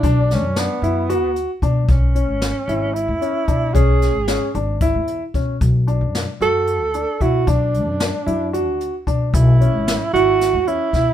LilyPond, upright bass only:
\new Staff \with { instrumentName = "Upright bass" } { \clef bass \time 7/8 \key b \dorian \tempo 4 = 113 b,,8. fis,8 r16 fis,8. d,8 r16 b,8 | b,,8. gis,,8 r16 gis,,8. e,8 r16 b,8 | b,,8. gis,,8 r16 gis,,8. e,8 r16 b,8 | b,,8. fis,8 r16 fis,8. d,8 r16 b,8 |
b,,8. fis,8 r16 fis,8. d,8 r16 b,8 | b,,8. gis,,8 r16 gis,,8. e,8 r16 b,8 | }